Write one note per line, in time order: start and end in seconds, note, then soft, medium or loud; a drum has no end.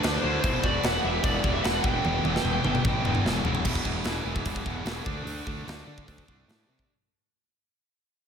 0.00 0.17 D2 loud
0.00 0.22 D3 loud
0.00 0.23 A3 loud
0.00 0.19 D4 medium
0.00 0.19 B4 medium
0.00 crash medium
0.04 0.23 D4 loud
0.04 snare loud
0.19 0.41 E4 medium
0.19 0.39 C5 loud
0.23 0.37 D2 loud
0.23 0.42 D3 medium
0.23 0.43 A3 loud
0.23 0.43 D4 loud
0.40 0.57 E1 loud
0.40 0.63 E2 medium
0.40 0.62 B2 loud
0.40 0.64 E3 loud
0.40 0.62 E4 medium
0.40 0.63 C5 loud
0.40 kick loud
0.40 crash medium
0.63 0.77 E1 medium
0.63 0.82 E2 medium
0.63 0.83 B2 medium
0.63 0.84 E3 loud
0.63 0.82 F#4 medium
0.63 0.84 D5 medium
0.63 kick medium
0.80 0.97 E1 loud
0.80 1.03 E2 medium
0.80 1.02 B2 loud
0.80 1.01 B4 medium
0.80 1.02 F#5 loud
0.80 crash medium
0.85 1.04 E3 medium
0.85 snare loud
1.02 1.18 E1 medium
1.02 1.24 E2 medium
1.02 1.24 B2 loud
1.02 1.25 E3 loud
1.02 1.21 G4 medium
1.02 1.23 E5 medium
1.22 1.38 E1 loud
1.22 1.43 E2 medium
1.22 1.43 B2 loud
1.22 1.44 E3 medium
1.22 1.51 G4 medium
1.22 1.53 D5 medium
1.22 kick loud
1.22 crash medium
1.44 1.58 E1 loud
1.44 1.63 E2 medium
1.44 1.62 B2 medium
1.44 1.64 E3 loud
1.44 kick medium
1.53 1.63 G4 medium
1.53 1.63 E5 medium
1.63 1.78 E1 loud
1.63 1.84 E2 loud
1.63 1.83 B2 loud
1.63 1.86 E3 loud
1.63 1.81 B4 medium
1.63 1.84 F#5 medium
1.63 snare loud
1.63 crash medium
1.82 1.98 E1 loud
1.82 2.03 E2 loud
1.82 2.04 B2 loud
1.82 2.05 E3 loud
1.82 3.20 B4 medium
1.82 3.21 G5 loud
1.82 kick loud
2.04 2.19 E1 medium
2.04 2.23 E2 medium
2.04 2.23 B2 loud
2.04 2.24 E3 loud
2.04 high tom medium
2.24 2.38 E1 medium
2.24 2.44 E2 medium
2.24 2.44 B2 medium
2.24 2.44 E3 medium
2.24 high tom medium
2.36 snare medium
2.44 2.58 E1 loud
2.44 2.63 E2 medium
2.44 2.64 B2 medium
2.44 2.64 E3 medium
2.44 mid tom medium
2.64 2.78 G1 medium
2.64 2.84 E2 loud
2.64 2.85 B2 loud
2.64 2.86 E3 loud
2.64 mid tom medium
2.75 mid tom medium
2.85 2.98 A1 medium
2.85 3.03 E2 medium
2.85 3.04 B2 loud
2.85 3.05 E3 loud
2.85 kick loud
2.85 mid tom medium
3.04 3.18 E1 loud
3.04 3.24 E2 medium
3.04 3.25 B2 medium
3.04 3.25 E3 medium
3.04 mid tom loud
3.15 mid tom medium
3.25 3.39 E1 loud
3.25 3.45 E2 loud
3.25 3.45 B2 loud
3.25 3.46 E3 loud
3.25 snare loud
3.44 3.58 E1 medium
3.44 3.64 E2 medium
3.44 3.64 B2 loud
3.44 3.65 E3 loud
3.44 floor tom loud
3.55 floor tom loud
3.65 3.80 E1 medium
3.65 3.84 E2 medium
3.65 3.85 B2 loud
3.65 3.85 E3 loud
3.65 kick loud
3.65 crash loud
3.75 kick medium
3.85 4.00 E1 medium
3.85 4.04 E2 medium
3.85 4.04 B2 medium
3.85 4.05 E3 medium
3.85 kick medium
4.04 4.19 E1 medium
4.04 4.22 E2 medium
4.04 4.23 B2 medium
4.04 4.24 E3 medium
4.04 snare loud
4.04 open hi-hat medium
4.23 4.39 E1 medium
4.23 4.43 E2 medium
4.23 4.44 B2 medium
4.23 4.45 E3 medium
4.36 kick medium
4.45 4.60 E1 medium
4.45 4.63 E2 medium
4.45 4.64 B2 loud
4.45 4.64 E3 medium
4.45 kick medium
4.45 open hi-hat medium
4.56 kick medium
4.64 4.80 E1 medium
4.64 4.83 E2 medium
4.64 4.84 B2 medium
4.64 4.84 E3 loud
4.64 kick medium
4.84 5.00 E1 medium
4.84 5.05 E2 medium
4.84 5.04 B2 medium
4.84 5.05 E3 medium
4.84 snare loud
4.84 open hi-hat medium
5.04 5.21 D2 medium
5.04 5.22 D3 medium
5.04 5.22 A3 medium
5.04 5.23 D4 loud
5.04 kick loud
5.23 5.40 D2 medium
5.23 5.44 D3 medium
5.23 5.45 A3 loud
5.23 5.45 D4 loud
5.23 open hi-hat medium
5.45 5.61 D2 medium
5.45 5.64 D3 medium
5.45 5.64 A3 medium
5.45 5.65 D4 medium
5.45 kick medium
5.65 5.82 D2 medium
5.65 5.84 D3 medium
5.65 5.84 A3 medium
5.65 5.85 D4 medium
5.65 open hi-hat soft
5.69 snare loud
5.85 6.05 D3 medium
5.85 6.02 D3 medium
5.85 6.06 A3 medium
5.85 6.06 D4 medium
5.98 kick medium
6.06 6.22 D2 medium
6.06 6.26 D3 medium
6.06 6.26 A3 medium
6.06 6.27 D4 medium
6.06 kick medium
6.06 open hi-hat medium
6.18 kick medium
6.27 6.43 C2 medium
6.27 6.47 D3 medium
6.27 6.48 A3 medium
6.27 6.48 D4 loud
6.27 kick medium
6.48 6.63 A2 medium
6.48 6.68 D3 medium
6.48 6.68 A3 medium
6.48 6.69 D4 loud
6.48 snare medium
6.48 open hi-hat medium
6.68 6.83 C3 medium
6.68 6.88 D3 medium
6.68 6.89 A3 medium
6.68 6.89 D4 medium
6.79 kick medium